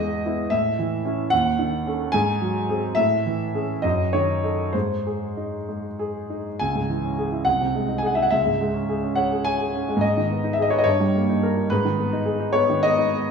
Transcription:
Already playing: E2 D#5
0.00 G#3
0.26 B3 E4
0.50 A2 E5
0.79 E3
1.05 C#4 E4
1.30 D#2 F#5
1.59 D#3
1.87 C#4 A4
2.12 G#2 G#5
2.41 F#3
2.69 C4 G#4
2.95 A2 E5
3.26 E3
3.54 C#4 G#4
3.82 F#2 D#5
4.13 D#3 C#5
4.44 D#4 A4
4.73 G#2 C5
5.07 G#4
5.37 D#4
5.69 G#3
5.99 G#4
6.30 D#4
6.59 C#2 G#5
6.75 G#2
6.89 E3
7.05 C#4
7.18 G#4
7.32 E4
7.45 C2 F#5
7.61 C3
7.75 G#3
7.88 D#4
7.98 G#5
8.03 G#4 F#5
8.15 D#4 E5
8.23 F#5
8.31 C#2 E5
8.46 G#2
8.61 G#3
8.74 C#4
8.89 G#4
9.04 C#4
9.15 C#5 F#5
9.32 G#4
9.45 C#5 G#5
9.61 G#4
9.75 C#4
9.89 G#3
9.97 G#2
10.01 D#5
10.17 D#3
10.30 B3
10.44 D#4
10.53 E5
10.59 G#4 D#5
10.70 B4 C#5
10.78 D#5
10.84 G2 C#5
11.00 G3
11.15 A#3
11.29 D#4
11.43 A#4
11.56 D#4
11.70 G#2 B4
11.85 D#3
11.99 B3
12.13 D#4
12.26 G#4
12.40 D#4
12.53 B3 C#5
12.69 D#3
12.83 B3 D#5
12.98 D#4
13.14 B3

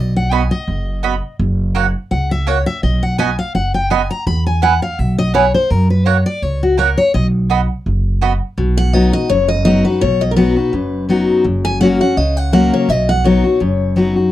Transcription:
Already playing: B1 D#5
0.16 F#5
0.31 B3 F#4 D#5 G#5 B5
0.51 D#5
0.68 F#1
1.03 B3 F#4 D#5 B5
1.39 F#1
1.75 A#3 F#4 C#5 F#5
2.11 C#2 F#5
2.31 E5
2.47 A#3 F#4 C#5 F#5
2.66 E5
2.83 B1 D#5
3.03 F#5
3.18 B3 F#4 D#5 G#5 B5
3.39 F5
3.55 F#1 F#5
3.74 G5
3.90 B3 F#4 D#5 G#5 B5
4.10 A#5
4.27 E2 B5
4.46 G#5
4.62 B3 E4 B4 F#5 G#5
4.82 F5
4.99 B1 E5
5.18 D#5
5.34 B3 E4 B4 C#5 G#5
5.54 C5
5.70 F#2 A#4
5.90 B4
6.06 A#3 F#4 C#5 F#5
6.26 D5
6.42 C#2 C#5
6.63 F#4
6.78 A#3 F#4 A#4 C#5 F#5
6.97 C#5
7.14 B1 D#5
7.50 B3 F#4 D#5 B5
7.86 F#1
8.21 B3 F#4 D#5 B5
8.58 B1 B2
8.77 F#5
8.93 F#3 B3 D#4 F#4 D#5
9.12 D#4 F#4 D#5
9.29 F#1 F#2 C#5
9.48 D#5
9.65 F#3 B3 D#4 F#4 D#5
9.85 D#4 F#4 B4
10.01 B1 B2 C#5
10.21 D#5
10.31 A#4
10.36 F#3 B3 D#4 F#4 B4
10.56 D#4 F#4
10.73 F#1 F#2
11.09 F#3 B3 D#4 F#4
11.44 F#1 F#2
11.65 G#5
11.80 F#3 A#3 C#4 F#4 F#5
12.00 C#4 F#4 F#5
12.17 C#2 C#3 D#5
12.37 F#5
12.52 F#3 A#3 C#4 F#4 F#5
12.74 C#5
12.89 B1 B2 D#5
13.09 F#5
13.24 F#3 B3 D#4 F#4 C#5
13.44 D#4 F#4
13.60 F#1 F#2
13.96 F#3 B3 D#4 F#4
14.16 D#4 F#4

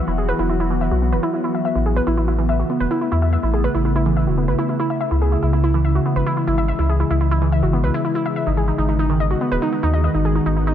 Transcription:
Already playing: E3 F#3 B3 F#4
0.08 E1 E4
0.18 G#4
0.29 B4
0.39 E1 E4
0.50 E4
0.60 E4
0.71 E3
0.81 E5
0.91 B1 F#4
1.02 B3
1.12 E1 B4
1.23 E4
1.34 E4
1.44 E4
1.55 E5
1.65 E5
1.75 A1 C#3 A3 E4
1.86 G#4
1.96 B4
2.07 A1 E4
2.17 E4
2.28 E4
2.38 E3
2.49 E5
2.59 F#4
2.70 B3
2.80 E1 B4
2.91 E4
3.01 E4
3.12 E2 E4
3.22 E5
3.33 E5
3.43 A1 E4
3.54 G#4
3.64 B4
3.75 A1 E4
3.85 E4
3.96 E4
4.06 E3
4.17 E5
4.27 E1 F#4
4.38 B3
4.48 A1 B4
4.59 E4
4.69 E4
4.80 E4
4.90 E5
5.01 E5
5.11 C#2 E3 G#3 E4
5.22 G#4
5.32 E4
5.43 C#2 E4
5.53 E4
5.64 E4
5.74 E3
5.85 E5
5.95 F#4
6.06 B3
6.16 G#1 B4
6.27 E4
6.37 E4
6.47 G#1 E4
6.58 E5
6.68 E5
6.79 C#2 E4
6.89 G#4
7.00 E4
7.10 C#2 E4
7.21 E4
7.31 E4
7.42 E3
7.52 E5
7.63 G#1 F#4
7.73 B3
7.84 C#2 B4
7.94 E4
8.05 E4
8.15 E4
8.26 E5
8.36 E5
8.47 G#1 D#3 B3 D#4 F#4
8.57 G#4
8.68 D#4
8.78 G#1 D#4
8.89 D#4
8.99 D#4
9.10 D#3
9.20 D#5
9.31 F#4
9.41 B3
9.52 D#1 B4
9.62 D#4
9.73 D#4
9.83 D#2 D#4
9.94 D#5
10.04 D#5
10.15 G#1 D#4
10.25 G#4
10.35 D#4
10.46 G#1 D#4
10.57 D#4
10.67 D#4

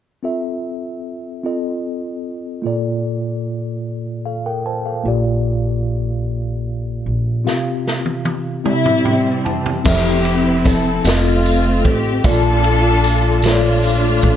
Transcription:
0.23 C4 F4 A4 E5
1.44 C4 F4 A4 D#5
2.62 A#2 A#3 F4 A4
2.67 D5
4.26 A4 F5
4.46 A#4 G5
4.66 C5 A5
4.86 A4 F5
5.04 A#1 A#2 A#3 F4 G4
5.08 D5
7.06 A#1
7.44 C3 C4 F4 G4 F5, snare
7.87 snare
8.06 high tom
8.25 high tom
8.64 C3 G3 C4 E4 G4 D5, mid tom
8.73 E5
8.86 mid tom
9.05 G5, mid tom
9.45 A5, floor tom
9.66 floor tom
9.84 F1 F3 C4 E4 G4 A4 E5, kick, crash, tambourine
10.25 ride
10.65 A4, kick, ride, tambourine
11.04 F1 A3 C4 F4 A4 D#5, snare, ride, tambourine
11.45 ride, tambourine
11.85 A1 G4, kick, ride
12.24 A#1 A#2 A#3 D4 F4 A4 D5, kick, ride, tambourine
12.64 ride
13.04 ride, tambourine
13.42 A#2 A3 D4 F4 A4 C#5, snare, ride, tambourine
13.52 D5
13.83 ride, tambourine
14.22 A1, kick, ride

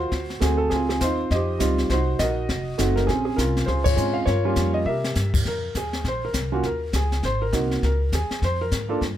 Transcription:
Already playing: D#2 F4 F#4 C5
0.12 D2, brush sweep, kick, snare
0.30 snare
0.40 D2 A3 C4 F#4 G#4, kick, snare, hi-hat pedal
0.58 A4
0.70 C#2 C4 F4 G#4, brush sweep, kick, snare
0.89 G#4, snare
1.01 D#2 D#4 F4 C5, kick, snare, hi-hat pedal
1.31 F2 G4 C5 D#5, brush sweep, kick, snare
1.59 C#2 G3 C4 D#4 F4, kick, snare, hi-hat pedal
1.78 snare
1.90 C2 D#4 F#4 C5, brush sweep, kick, snare
2.19 A#1 F#4 A#4 D#5, kick, snare, hi-hat pedal
2.49 F1, brush sweep, kick, snare
2.78 F#1 A3 C4 D#4 F#4, kick, snare, hi-hat pedal
2.96 A#4, snare
3.07 A#1 C4 C#4 G#4, brush sweep, kick, snare
3.25 G#4
3.36 C2 C#4 F4 A#4, kick, snare, hi-hat pedal
3.57 snare
3.66 C#2 F4 G#4 C5, brush sweep, kick, snare
3.84 F4 G#4 C#5, kick, ride
3.96 G#2 G#3 C4 C#4 F4, hi-hat pedal
4.14 F5
4.26 G2 F4 A#4 C#5, brush sweep, kick, snare
4.45 G3 A#3 C#4 F4
4.56 F2, kick, snare, hi-hat pedal
4.74 D#5
4.85 C3 G4 A#4 E5
5.04 snare
5.15 G2, snare, hi-hat pedal
5.34 kick, crash
5.45 F2 A#4, brush sweep, kick, snare
5.75 D#2 G#4, kick, snare, hi-hat pedal
5.93 snare
6.04 A#1 C5, brush sweep, kick, snare
6.25 A#4
6.34 C2, kick, snare, hi-hat pedal
6.52 A#3 C#4 F4 F#4
6.63 D#2 A#4, brush sweep, kick, snare
6.93 C#2 G#4, kick, snare, hi-hat pedal
7.12 snare
7.23 G#1 C5, brush sweep, kick, snare
7.42 A#4
7.52 C2 A#3 C4 D#4 F#4, kick, snare, hi-hat pedal
7.71 snare
7.82 C#2 A#4, brush sweep, kick, snare
8.12 D#2 G#4, kick, snare, hi-hat pedal
8.30 muted upright bass stroke, snare
8.42 F2 C5, brush sweep, kick, snare
8.61 A#4
8.72 G#2, kick, snare, hi-hat pedal
8.89 A#3 D4 F4 A4
9.01 G2, brush sweep, kick, snare

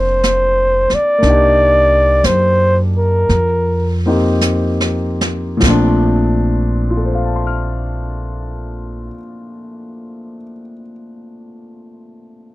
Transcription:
Already playing: F1 A#3 C4 D4 F4 C5
0.23 snare, hi-hat pedal
0.90 muted upright bass stroke, snare
0.94 D5
1.18 A#3 D4
1.22 C2 D#4, brush sweep, snare
1.29 G4
2.24 F#2 C5, snare, hi-hat pedal
2.98 A#4
3.29 F2, brush sweep, snare
4.06 A#3 C4 D#4 G4
4.41 snare, hi-hat pedal
4.80 snare
5.21 snare
5.57 A#2 F3
5.63 A#1 A3 C4, kick, snare, china
5.69 D4
6.90 F4
6.97 A4
7.05 C5
7.15 F5
7.25 A5
7.36 C6
7.47 F6

